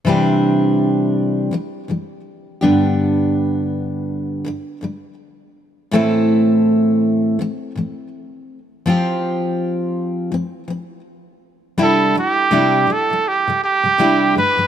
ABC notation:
X:1
M:4/4
L:1/16
Q:"Swing 16ths" 1/4=82
K:C
V:1 name="Trumpet"
z16 | z16 | z16 | z16 |
A2 G4 A2 G2 G4 B2 |]
V:2 name="Steel-string acoustic guitar" clef=bass
[C,E,G,CDG]8 [C,E,G,]2 [C,E,G,]2 z2 [G,,D,G,B,DG]2- | [G,,D,G,B,DG]8 [G,,D,G,]2 [G,,D,G,]2 z4 | [A,,E,A,CEA]8 [A,,E,A,]2 [A,,E,A,]2 z4 | [F,CFG]8 [F,C]2 [F,C]2 z4 |
[C,G,DEG]2 [C,G,]2 [C,G,DEG]2 [C,G,] [C,G,]2 [C,G,]2 [C,G,] [C,G,DEG]2 [G,,D,G,] [G,,D,G,] |]